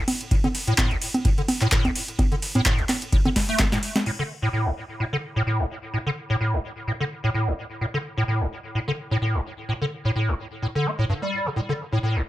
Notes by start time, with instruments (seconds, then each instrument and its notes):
0.08 open hi-hat, ride, high conga
0.21 closed hi-hat
0.31 acid bass A2, kick, closed hi-hat, ride
0.44 acid bass D3, closed hi-hat, high conga
0.55 open hi-hat, ride
0.67 acid bass A2, closed hi-hat
0.78 acid bass A2, kick, clap, closed hi-hat, ride, high conga
0.91 acid bass A1, closed hi-hat
1.02 open hi-hat, ride
1.14 closed hi-hat, high conga
1.25 acid bass A2, kick, closed hi-hat, ride
1.38 acid bass D3, closed hi-hat
1.48 open hi-hat, ride, high conga
1.61 acid bass A2, clap, closed hi-hat
1.72 acid bass A2, kick, clap, closed hi-hat, ride
1.85 acid bass A1, closed hi-hat, high conga
1.95 open hi-hat, ride
2.08 closed hi-hat
2.19 acid bass A2, kick, closed hi-hat, ride, high conga
2.32 acid bass D3, closed hi-hat
2.42 open hi-hat, ride
2.55 acid bass A2, closed hi-hat, high conga
2.66 acid bass A2, kick, clap, closed hi-hat, ride
2.79 acid bass A1, closed hi-hat
2.89 clap, open hi-hat, ride, high conga
3.02 closed hi-hat
3.12 acid bass A2, kick, closed hi-hat, ride
3.25 acid bass D3, closed hi-hat, high conga
3.36 kick, snare, open hi-hat, ride
3.49 acid bass A3, open hi-hat
3.59 acid bass A2, kick, snare, clap, closed hi-hat, ride, high conga
3.72 acid bass A2, snare, closed hi-hat
3.83 open hi-hat, ride
3.96 snare, closed hi-hat, high conga
4.06 acid bass A2, crash
4.19 acid bass D3
4.42 acid bass A2
4.53 acid bass A2
4.66 acid bass A1
5.00 acid bass A2
5.13 acid bass D3
5.36 acid bass A2
5.47 acid bass A2
5.60 acid bass A1
5.94 acid bass A2
6.06 acid bass D3
6.30 acid bass A2
6.41 acid bass A2
6.53 acid bass A1
6.87 acid bass A2
7.00 acid bass D3
7.24 acid bass A2
7.34 acid bass A2
7.47 acid bass A1
7.81 acid bass A2
7.94 acid bass D3
8.18 acid bass A2
8.28 acid bass A2
8.41 acid bass A1
8.75 acid bass A2
8.88 acid bass D3
9.11 acid bass A2
9.22 acid bass A2
9.35 acid bass A1
9.69 acid bass A2
9.82 acid bass D3
10.05 acid bass A2
10.16 acid bass A2
10.28 acid bass A1
10.62 acid bass A2
10.75 acid bass D3
10.86 acid bass C4
10.99 acid bass A2
11.09 acid bass G2
11.22 acid bass G3
11.46 acid bass A2
11.56 acid bass A2
11.69 acid bass D3
11.93 acid bass A2
12.03 acid bass A2
12.16 acid bass A1